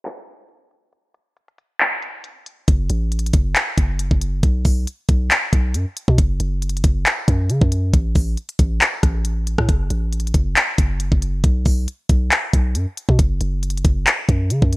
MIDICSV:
0, 0, Header, 1, 3, 480
1, 0, Start_track
1, 0, Key_signature, 3, "minor"
1, 0, Tempo, 437956
1, 1017, Time_signature, 4, 2, 24, 8
1, 16186, End_track
2, 0, Start_track
2, 0, Title_t, "808-style bass"
2, 0, Program_c, 0, 38
2, 2937, Note_on_c, 0, 30, 111
2, 3168, Note_off_c, 0, 30, 0
2, 3178, Note_on_c, 0, 33, 108
2, 3639, Note_off_c, 0, 33, 0
2, 3657, Note_on_c, 0, 30, 107
2, 3887, Note_off_c, 0, 30, 0
2, 4139, Note_on_c, 0, 30, 103
2, 4490, Note_off_c, 0, 30, 0
2, 4506, Note_on_c, 0, 30, 103
2, 4844, Note_off_c, 0, 30, 0
2, 4857, Note_on_c, 0, 35, 109
2, 5088, Note_off_c, 0, 35, 0
2, 5098, Note_on_c, 0, 35, 105
2, 5328, Note_off_c, 0, 35, 0
2, 5576, Note_on_c, 0, 35, 109
2, 5807, Note_off_c, 0, 35, 0
2, 6058, Note_on_c, 0, 35, 106
2, 6297, Note_on_c, 0, 42, 100
2, 6313, Note_off_c, 0, 35, 0
2, 6418, Note_off_c, 0, 42, 0
2, 6664, Note_on_c, 0, 47, 108
2, 6772, Note_off_c, 0, 47, 0
2, 6778, Note_on_c, 0, 30, 112
2, 7008, Note_off_c, 0, 30, 0
2, 7017, Note_on_c, 0, 30, 106
2, 7478, Note_off_c, 0, 30, 0
2, 7497, Note_on_c, 0, 30, 106
2, 7727, Note_off_c, 0, 30, 0
2, 7978, Note_on_c, 0, 42, 107
2, 8217, Note_on_c, 0, 49, 102
2, 8233, Note_off_c, 0, 42, 0
2, 8338, Note_off_c, 0, 49, 0
2, 8346, Note_on_c, 0, 42, 107
2, 8684, Note_off_c, 0, 42, 0
2, 8698, Note_on_c, 0, 33, 107
2, 8928, Note_off_c, 0, 33, 0
2, 8938, Note_on_c, 0, 33, 104
2, 9168, Note_off_c, 0, 33, 0
2, 9417, Note_on_c, 0, 33, 104
2, 9648, Note_off_c, 0, 33, 0
2, 9899, Note_on_c, 0, 33, 106
2, 10481, Note_off_c, 0, 33, 0
2, 10504, Note_on_c, 0, 45, 106
2, 10612, Note_off_c, 0, 45, 0
2, 10618, Note_on_c, 0, 30, 111
2, 10848, Note_off_c, 0, 30, 0
2, 10856, Note_on_c, 0, 33, 105
2, 11317, Note_off_c, 0, 33, 0
2, 11336, Note_on_c, 0, 30, 109
2, 11567, Note_off_c, 0, 30, 0
2, 11818, Note_on_c, 0, 30, 102
2, 12170, Note_off_c, 0, 30, 0
2, 12185, Note_on_c, 0, 30, 106
2, 12524, Note_off_c, 0, 30, 0
2, 12537, Note_on_c, 0, 35, 112
2, 12767, Note_off_c, 0, 35, 0
2, 12777, Note_on_c, 0, 35, 105
2, 13008, Note_off_c, 0, 35, 0
2, 13256, Note_on_c, 0, 35, 107
2, 13487, Note_off_c, 0, 35, 0
2, 13738, Note_on_c, 0, 35, 106
2, 13976, Note_on_c, 0, 42, 99
2, 13993, Note_off_c, 0, 35, 0
2, 14098, Note_off_c, 0, 42, 0
2, 14343, Note_on_c, 0, 47, 107
2, 14452, Note_off_c, 0, 47, 0
2, 14457, Note_on_c, 0, 30, 115
2, 14687, Note_off_c, 0, 30, 0
2, 14697, Note_on_c, 0, 30, 107
2, 15158, Note_off_c, 0, 30, 0
2, 15176, Note_on_c, 0, 30, 104
2, 15407, Note_off_c, 0, 30, 0
2, 15658, Note_on_c, 0, 42, 108
2, 15898, Note_on_c, 0, 49, 99
2, 15914, Note_off_c, 0, 42, 0
2, 16018, Note_off_c, 0, 49, 0
2, 16025, Note_on_c, 0, 42, 101
2, 16186, Note_off_c, 0, 42, 0
2, 16186, End_track
3, 0, Start_track
3, 0, Title_t, "Drums"
3, 57, Note_on_c, 9, 39, 110
3, 61, Note_on_c, 9, 42, 84
3, 167, Note_off_c, 9, 39, 0
3, 171, Note_off_c, 9, 42, 0
3, 298, Note_on_c, 9, 42, 77
3, 407, Note_off_c, 9, 42, 0
3, 535, Note_on_c, 9, 42, 80
3, 644, Note_off_c, 9, 42, 0
3, 779, Note_on_c, 9, 42, 66
3, 889, Note_off_c, 9, 42, 0
3, 1016, Note_on_c, 9, 42, 72
3, 1125, Note_off_c, 9, 42, 0
3, 1254, Note_on_c, 9, 42, 79
3, 1363, Note_off_c, 9, 42, 0
3, 1498, Note_on_c, 9, 42, 43
3, 1607, Note_off_c, 9, 42, 0
3, 1625, Note_on_c, 9, 42, 73
3, 1735, Note_off_c, 9, 42, 0
3, 1735, Note_on_c, 9, 42, 85
3, 1845, Note_off_c, 9, 42, 0
3, 1978, Note_on_c, 9, 39, 111
3, 1982, Note_on_c, 9, 42, 88
3, 2088, Note_off_c, 9, 39, 0
3, 2092, Note_off_c, 9, 42, 0
3, 2218, Note_on_c, 9, 42, 75
3, 2328, Note_off_c, 9, 42, 0
3, 2455, Note_on_c, 9, 42, 79
3, 2565, Note_off_c, 9, 42, 0
3, 2699, Note_on_c, 9, 42, 67
3, 2809, Note_off_c, 9, 42, 0
3, 2936, Note_on_c, 9, 42, 77
3, 2937, Note_on_c, 9, 36, 120
3, 3046, Note_off_c, 9, 42, 0
3, 3047, Note_off_c, 9, 36, 0
3, 3174, Note_on_c, 9, 42, 80
3, 3283, Note_off_c, 9, 42, 0
3, 3417, Note_on_c, 9, 42, 59
3, 3497, Note_off_c, 9, 42, 0
3, 3497, Note_on_c, 9, 42, 60
3, 3577, Note_off_c, 9, 42, 0
3, 3577, Note_on_c, 9, 42, 64
3, 3654, Note_off_c, 9, 42, 0
3, 3654, Note_on_c, 9, 42, 87
3, 3656, Note_on_c, 9, 36, 107
3, 3764, Note_off_c, 9, 42, 0
3, 3766, Note_off_c, 9, 36, 0
3, 3898, Note_on_c, 9, 39, 117
3, 3902, Note_on_c, 9, 42, 90
3, 4007, Note_off_c, 9, 39, 0
3, 4011, Note_off_c, 9, 42, 0
3, 4138, Note_on_c, 9, 36, 100
3, 4139, Note_on_c, 9, 42, 75
3, 4248, Note_off_c, 9, 36, 0
3, 4248, Note_off_c, 9, 42, 0
3, 4376, Note_on_c, 9, 42, 83
3, 4485, Note_off_c, 9, 42, 0
3, 4505, Note_on_c, 9, 36, 96
3, 4615, Note_off_c, 9, 36, 0
3, 4619, Note_on_c, 9, 42, 70
3, 4729, Note_off_c, 9, 42, 0
3, 4856, Note_on_c, 9, 42, 80
3, 4857, Note_on_c, 9, 36, 119
3, 4966, Note_off_c, 9, 42, 0
3, 4967, Note_off_c, 9, 36, 0
3, 5094, Note_on_c, 9, 46, 88
3, 5098, Note_on_c, 9, 36, 94
3, 5204, Note_off_c, 9, 46, 0
3, 5208, Note_off_c, 9, 36, 0
3, 5341, Note_on_c, 9, 42, 74
3, 5451, Note_off_c, 9, 42, 0
3, 5575, Note_on_c, 9, 42, 91
3, 5577, Note_on_c, 9, 36, 107
3, 5685, Note_off_c, 9, 42, 0
3, 5686, Note_off_c, 9, 36, 0
3, 5819, Note_on_c, 9, 39, 115
3, 5823, Note_on_c, 9, 42, 94
3, 5928, Note_off_c, 9, 39, 0
3, 5933, Note_off_c, 9, 42, 0
3, 6058, Note_on_c, 9, 36, 100
3, 6059, Note_on_c, 9, 42, 79
3, 6168, Note_off_c, 9, 36, 0
3, 6168, Note_off_c, 9, 42, 0
3, 6295, Note_on_c, 9, 42, 80
3, 6405, Note_off_c, 9, 42, 0
3, 6540, Note_on_c, 9, 42, 72
3, 6649, Note_off_c, 9, 42, 0
3, 6664, Note_on_c, 9, 36, 94
3, 6773, Note_off_c, 9, 36, 0
3, 6776, Note_on_c, 9, 42, 80
3, 6778, Note_on_c, 9, 36, 118
3, 6886, Note_off_c, 9, 42, 0
3, 6887, Note_off_c, 9, 36, 0
3, 7014, Note_on_c, 9, 42, 84
3, 7124, Note_off_c, 9, 42, 0
3, 7258, Note_on_c, 9, 42, 63
3, 7337, Note_off_c, 9, 42, 0
3, 7337, Note_on_c, 9, 42, 62
3, 7417, Note_off_c, 9, 42, 0
3, 7417, Note_on_c, 9, 42, 64
3, 7495, Note_off_c, 9, 42, 0
3, 7495, Note_on_c, 9, 42, 84
3, 7497, Note_on_c, 9, 36, 103
3, 7605, Note_off_c, 9, 42, 0
3, 7606, Note_off_c, 9, 36, 0
3, 7739, Note_on_c, 9, 39, 115
3, 7743, Note_on_c, 9, 42, 91
3, 7848, Note_off_c, 9, 39, 0
3, 7852, Note_off_c, 9, 42, 0
3, 7978, Note_on_c, 9, 36, 103
3, 7979, Note_on_c, 9, 42, 78
3, 8088, Note_off_c, 9, 36, 0
3, 8089, Note_off_c, 9, 42, 0
3, 8216, Note_on_c, 9, 42, 85
3, 8325, Note_off_c, 9, 42, 0
3, 8346, Note_on_c, 9, 36, 99
3, 8455, Note_off_c, 9, 36, 0
3, 8460, Note_on_c, 9, 42, 73
3, 8570, Note_off_c, 9, 42, 0
3, 8697, Note_on_c, 9, 42, 78
3, 8698, Note_on_c, 9, 36, 125
3, 8806, Note_off_c, 9, 42, 0
3, 8807, Note_off_c, 9, 36, 0
3, 8934, Note_on_c, 9, 46, 87
3, 8938, Note_on_c, 9, 36, 92
3, 9044, Note_off_c, 9, 46, 0
3, 9048, Note_off_c, 9, 36, 0
3, 9178, Note_on_c, 9, 42, 44
3, 9287, Note_off_c, 9, 42, 0
3, 9304, Note_on_c, 9, 42, 78
3, 9414, Note_off_c, 9, 42, 0
3, 9415, Note_on_c, 9, 42, 89
3, 9417, Note_on_c, 9, 36, 105
3, 9525, Note_off_c, 9, 42, 0
3, 9526, Note_off_c, 9, 36, 0
3, 9658, Note_on_c, 9, 39, 118
3, 9662, Note_on_c, 9, 42, 90
3, 9768, Note_off_c, 9, 39, 0
3, 9772, Note_off_c, 9, 42, 0
3, 9897, Note_on_c, 9, 37, 61
3, 9898, Note_on_c, 9, 36, 103
3, 9899, Note_on_c, 9, 42, 79
3, 10007, Note_off_c, 9, 37, 0
3, 10008, Note_off_c, 9, 36, 0
3, 10008, Note_off_c, 9, 42, 0
3, 10136, Note_on_c, 9, 42, 85
3, 10245, Note_off_c, 9, 42, 0
3, 10379, Note_on_c, 9, 42, 74
3, 10489, Note_off_c, 9, 42, 0
3, 10504, Note_on_c, 9, 36, 93
3, 10504, Note_on_c, 9, 37, 104
3, 10613, Note_off_c, 9, 36, 0
3, 10614, Note_off_c, 9, 37, 0
3, 10617, Note_on_c, 9, 42, 77
3, 10618, Note_on_c, 9, 36, 121
3, 10726, Note_off_c, 9, 42, 0
3, 10727, Note_off_c, 9, 36, 0
3, 10854, Note_on_c, 9, 42, 85
3, 10964, Note_off_c, 9, 42, 0
3, 11097, Note_on_c, 9, 42, 61
3, 11177, Note_off_c, 9, 42, 0
3, 11177, Note_on_c, 9, 42, 62
3, 11257, Note_off_c, 9, 42, 0
3, 11257, Note_on_c, 9, 42, 63
3, 11335, Note_off_c, 9, 42, 0
3, 11335, Note_on_c, 9, 42, 88
3, 11336, Note_on_c, 9, 36, 103
3, 11444, Note_off_c, 9, 42, 0
3, 11446, Note_off_c, 9, 36, 0
3, 11578, Note_on_c, 9, 39, 111
3, 11583, Note_on_c, 9, 42, 90
3, 11688, Note_off_c, 9, 39, 0
3, 11692, Note_off_c, 9, 42, 0
3, 11818, Note_on_c, 9, 36, 100
3, 11818, Note_on_c, 9, 42, 79
3, 11928, Note_off_c, 9, 36, 0
3, 11928, Note_off_c, 9, 42, 0
3, 12055, Note_on_c, 9, 42, 83
3, 12165, Note_off_c, 9, 42, 0
3, 12185, Note_on_c, 9, 36, 100
3, 12295, Note_off_c, 9, 36, 0
3, 12299, Note_on_c, 9, 42, 70
3, 12409, Note_off_c, 9, 42, 0
3, 12536, Note_on_c, 9, 42, 75
3, 12537, Note_on_c, 9, 36, 121
3, 12645, Note_off_c, 9, 42, 0
3, 12647, Note_off_c, 9, 36, 0
3, 12773, Note_on_c, 9, 46, 86
3, 12777, Note_on_c, 9, 36, 93
3, 12883, Note_off_c, 9, 46, 0
3, 12887, Note_off_c, 9, 36, 0
3, 13020, Note_on_c, 9, 42, 70
3, 13129, Note_off_c, 9, 42, 0
3, 13254, Note_on_c, 9, 42, 88
3, 13256, Note_on_c, 9, 36, 107
3, 13364, Note_off_c, 9, 42, 0
3, 13366, Note_off_c, 9, 36, 0
3, 13497, Note_on_c, 9, 39, 119
3, 13501, Note_on_c, 9, 42, 93
3, 13607, Note_off_c, 9, 39, 0
3, 13611, Note_off_c, 9, 42, 0
3, 13738, Note_on_c, 9, 36, 104
3, 13738, Note_on_c, 9, 42, 80
3, 13847, Note_off_c, 9, 36, 0
3, 13847, Note_off_c, 9, 42, 0
3, 13975, Note_on_c, 9, 42, 82
3, 14084, Note_off_c, 9, 42, 0
3, 14219, Note_on_c, 9, 42, 73
3, 14329, Note_off_c, 9, 42, 0
3, 14343, Note_on_c, 9, 36, 91
3, 14453, Note_off_c, 9, 36, 0
3, 14456, Note_on_c, 9, 42, 77
3, 14457, Note_on_c, 9, 36, 126
3, 14565, Note_off_c, 9, 42, 0
3, 14567, Note_off_c, 9, 36, 0
3, 14693, Note_on_c, 9, 42, 81
3, 14803, Note_off_c, 9, 42, 0
3, 14937, Note_on_c, 9, 42, 60
3, 15017, Note_off_c, 9, 42, 0
3, 15017, Note_on_c, 9, 42, 60
3, 15097, Note_off_c, 9, 42, 0
3, 15097, Note_on_c, 9, 42, 62
3, 15175, Note_off_c, 9, 42, 0
3, 15175, Note_on_c, 9, 42, 90
3, 15176, Note_on_c, 9, 36, 106
3, 15285, Note_off_c, 9, 42, 0
3, 15286, Note_off_c, 9, 36, 0
3, 15418, Note_on_c, 9, 39, 117
3, 15422, Note_on_c, 9, 42, 89
3, 15527, Note_off_c, 9, 39, 0
3, 15532, Note_off_c, 9, 42, 0
3, 15658, Note_on_c, 9, 36, 103
3, 15658, Note_on_c, 9, 42, 78
3, 15768, Note_off_c, 9, 36, 0
3, 15768, Note_off_c, 9, 42, 0
3, 15895, Note_on_c, 9, 42, 81
3, 16005, Note_off_c, 9, 42, 0
3, 16025, Note_on_c, 9, 36, 101
3, 16135, Note_off_c, 9, 36, 0
3, 16140, Note_on_c, 9, 42, 73
3, 16186, Note_off_c, 9, 42, 0
3, 16186, End_track
0, 0, End_of_file